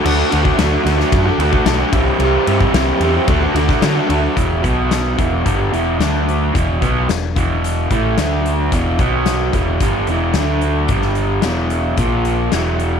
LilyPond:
<<
  \new Staff \with { instrumentName = "Overdriven electric guitar" } { \clef bass \time 4/4 \key d \lydian \tempo 4 = 110 <d a d' fis'>8 <d a d' fis'>16 <a d' fis'>16 <d a d' fis'>8 <d a d' fis'>16 <a d' fis'>8 <a d' fis'>16 <d a d' fis'>16 <a d' fis'>16 <d a d' fis'>16 <a d' fis'>16 <c e g c' g'>8 | <c e g c' g'>8 <e g c' g'>16 <g c' g'>16 <c e g c' g'>8 <e g c' g'>16 <g c' g'>16 <d a d' fis'>16 <a d' fis'>16 <d a d' fis'>16 <a d' fis'>16 <d a d' fis'>16 <a d' fis'>16 <d a d' fis'>8 | <e, b, e>8 <b, fis b>4 <e, b, e>8 <g, d g>8 <e, b, e>8 <d a d'>4 | <e, b, e>8 <b, fis b>8 <e, b,>8 <e, b, e>4 <a, e a>8 <d a d'>4 |
<e, b, e>8 <b, fis b>4 <e, b, e>8 <g, d g>8 <e, b, e>8 <d a d'>4 | <g, d g>4 <e, b, e>4 <ais, eis ais>4 <e, b, e>4 | }
  \new Staff \with { instrumentName = "Picked electric bass" } { \clef bass \time 4/4 \key d \lydian d,8 d,8 d,8 d,8 fis,8 d,8 b,,8 c,8 | c,8 g,8 c,8 e,8 d,8 d,8 d8 d,8 | e,,8 b,,4 e,,8 g,,8 e,,8 d,4 | e,,8 b,,8 e,,8 e,,4 a,,8 d,4 |
e,,8 b,,4 e,,8 g,,8 e,,8 d,4 | g,,4 e,,4 ais,,4 e,,4 | }
  \new DrumStaff \with { instrumentName = "Drums" } \drummode { \time 4/4 cymc8 cymr16 bd16 <cymr sn>8 <cymr sn>16 sn16 <bd cymr>8 cymr16 bd16 <cymr sn>8 <bd cymr>8 | cymr8 cymr16 bd16 <cymr sn>8 cymr8 <bd cymr>8 cymr16 <bd sn>16 <cymr sn>8 cymr8 | <hh bd>8 <hh bd>8 <hh sn>8 <hh bd>8 <hh bd>8 hh8 <hh sn>8 hh8 | <hh bd>8 <hh bd>8 <hh sn>8 <hh bd>8 hh8 <hh bd>8 <hh sn>8 hh8 |
<hh bd>8 <hh bd>8 <hh sn>8 <hh bd>8 <hh bd>8 hh8 <hh sn>8 hh8 | <hh bd>16 sn16 hh8 <hh sn>8 hh8 <hh bd>8 hh8 <hh sn>8 hh8 | }
>>